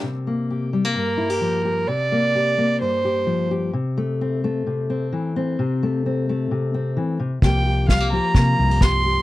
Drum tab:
SD |--------|--------|--------|--------|
BD |--------|--------|--------|--------|

SD |o-o-o-o-|
BD |o-o-o-o-|